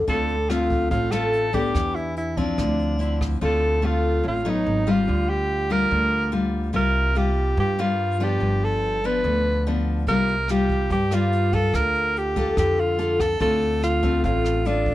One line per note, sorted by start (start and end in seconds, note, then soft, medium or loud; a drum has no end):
0.07 0.87 D2 medium
0.07 0.89 D3 medium
0.07 0.34 A3 medium
0.07 0.35 C4 soft
0.07 0.35 F4 medium
0.07 0.52 A4 medium
0.07 kick medium
0.07 closed hi-hat soft
0.28 closed hi-hat soft
0.50 1.09 A3 medium
0.50 1.09 C4 medium
0.50 0.91 F4 medium
0.50 1.09 F4 medium
0.50 cross-stick medium
0.50 closed hi-hat soft
0.70 kick medium
0.70 closed hi-hat soft
0.91 1.70 A1 medium
0.91 1.72 A2 medium
0.91 1.13 F4 medium
0.91 kick medium
0.91 closed hi-hat soft
1.11 1.50 A3 medium
1.11 1.50 C4 medium
1.11 1.51 F4 medium
1.11 1.56 A4 medium
1.11 cross-stick medium
1.11 closed hi-hat soft
1.33 closed hi-hat soft
1.53 2.33 B3 medium
1.53 2.33 D4 medium
1.53 2.34 G4 medium
1.53 1.97 G4 medium
1.53 kick medium
1.53 closed hi-hat soft
1.75 2.54 E2 medium
1.75 2.37 E3 medium
1.75 kick medium
1.75 cross-stick medium
1.75 closed hi-hat soft
1.95 2.16 E4 medium
1.95 closed hi-hat soft
2.17 2.39 E4 medium
2.17 closed hi-hat soft
2.37 2.96 F3 medium
2.37 2.96 C4 medium
2.37 3.20 D4 medium
2.37 2.96 E4 medium
2.37 kick medium
2.37 closed hi-hat soft
2.58 3.37 D2 medium
2.58 3.39 D3 medium
2.58 kick medium
2.58 cross-stick medium
2.58 closed hi-hat soft
2.79 closed hi-hat soft
2.99 3.37 F3 soft
2.99 3.38 C4 soft
2.99 3.38 E4 medium
2.99 closed hi-hat soft
3.21 kick medium
3.21 cross-stick medium
3.21 closed hi-hat soft
3.41 4.20 D2 medium
3.41 4.22 D3 soft
3.41 3.79 A3 soft
3.41 3.79 C4 soft
3.41 3.80 F4 medium
3.41 3.87 A4 medium
3.82 4.41 A3 medium
3.82 4.42 C4 soft
3.82 4.42 F4 medium
3.82 4.26 F4 medium
4.24 4.63 A1 medium
4.24 4.63 A2 medium
4.28 4.50 F4 medium
4.45 4.83 F#3 medium
4.45 4.83 B3 medium
4.45 4.84 D#4 medium
4.45 4.92 D#4 medium
4.66 5.05 G#1 medium
4.87 5.66 G3 medium
4.87 5.67 A#3 medium
4.87 5.67 F4 medium
4.87 5.31 F4 medium
5.08 5.87 D2 medium
5.08 5.89 D3 medium
5.30 5.73 G4 medium
5.70 6.29 G3 medium
5.70 6.29 A#3 medium
5.70 6.29 F4 medium
5.70 6.33 A#4 medium
5.91 6.70 D2 medium
5.91 6.72 D3 medium
6.32 6.70 G3 soft
6.32 6.70 A#3 soft
6.32 6.71 F4 medium
6.73 7.53 C2 medium
6.73 7.55 C3 medium
6.73 7.11 G3 soft
6.73 7.12 A#3 medium
6.73 7.12 F4 medium
6.73 7.19 A#4 medium
7.15 7.74 G3 medium
7.15 7.75 A#3 medium
7.15 7.75 F4 medium
7.15 7.58 G4 medium
7.57 8.36 G2 loud
7.57 8.38 G2 medium
7.57 7.82 G4 medium
7.79 8.16 G3 medium
7.79 8.17 A#3 medium
7.79 8.17 F4 medium
7.79 8.25 F4 medium
8.20 9.00 F3 medium
8.20 9.00 B3 medium
8.20 9.00 D4 medium
8.20 8.66 G4 medium
8.40 9.19 G1 medium
8.40 9.22 G2 medium
8.64 9.07 A4 medium
9.04 9.62 F3 medium
9.04 9.63 B3 medium
9.04 9.63 D4 medium
9.04 9.67 B4 medium
9.24 10.03 D2 medium
9.24 10.05 D3 soft
9.67 10.04 F3 soft
9.67 10.04 B3 medium
9.67 10.05 D4 medium
10.07 10.86 C2 medium
10.07 10.88 C3 soft
10.07 10.34 G3 medium
10.07 10.34 A#3 medium
10.07 10.35 F4 soft
10.07 10.52 A#4 loud
10.07 kick medium
10.07 closed hi-hat soft
10.27 closed hi-hat soft
10.48 10.90 G3 medium
10.48 10.91 A#3 medium
10.48 10.91 F4 medium
10.48 10.91 G4 medium
10.48 cross-stick medium
10.48 closed hi-hat soft
10.69 kick soft
10.69 closed hi-hat soft
10.90 11.69 G2 loud
10.90 11.71 G2 medium
10.90 11.16 G4 loud
10.90 kick medium
10.90 closed hi-hat soft
11.11 11.49 G3 medium
11.11 11.50 A#3 medium
11.11 11.50 F4 medium
11.11 11.56 F4 medium
11.11 cross-stick medium
11.32 closed hi-hat soft
11.53 12.33 A#3 medium
11.53 12.33 F4 medium
11.53 11.76 A4 loud
11.53 kick medium
11.53 closed hi-hat soft
11.74 12.53 D2 medium
11.74 12.56 D3 medium
11.74 12.19 A#4 medium
11.74 kick medium
11.74 cross-stick medium
11.74 closed hi-hat soft
11.95 closed hi-hat soft
12.16 12.58 G4 medium
12.16 closed hi-hat soft
12.36 12.95 A#3 medium
12.36 12.95 F4 medium
12.36 12.96 A4 medium
12.36 kick medium
12.36 closed hi-hat soft
12.57 13.36 F2 medium
12.57 13.38 D3 medium
12.57 12.82 G4 medium
12.57 kick medium
12.57 cross-stick medium
12.57 closed hi-hat soft
12.78 13.22 F4 medium
12.78 closed hi-hat soft
12.98 13.25 A#3 soft
12.98 13.25 F4 medium
12.98 13.25 A4 soft
12.98 closed hi-hat soft
13.20 13.41 A4 medium
13.20 kick medium
13.20 cross-stick medium
13.20 closed hi-hat soft
13.40 14.20 D2 loud
13.40 14.21 D3 medium
13.40 13.99 A3 medium
13.40 13.99 C4 medium
13.40 14.00 F4 medium
13.40 13.79 A4 medium
13.40 kick medium
13.40 closed hi-hat soft
13.62 closed hi-hat soft
13.83 14.21 F4 medium
13.83 cross-stick medium
13.83 closed hi-hat soft
14.03 14.62 A3 medium
14.03 14.62 C4 medium
14.03 14.62 F4 medium
14.03 kick medium
14.03 closed hi-hat soft
14.24 14.95 A1 loud
14.24 14.95 A2 medium
14.24 14.68 F4 medium
14.24 kick medium
14.24 closed hi-hat soft
14.45 cross-stick medium
14.45 closed hi-hat soft
14.65 14.92 A3 medium
14.65 14.92 C4 medium
14.65 14.95 D4 medium
14.65 14.93 F4 medium
14.65 closed hi-hat soft
14.86 kick medium
14.86 closed hi-hat soft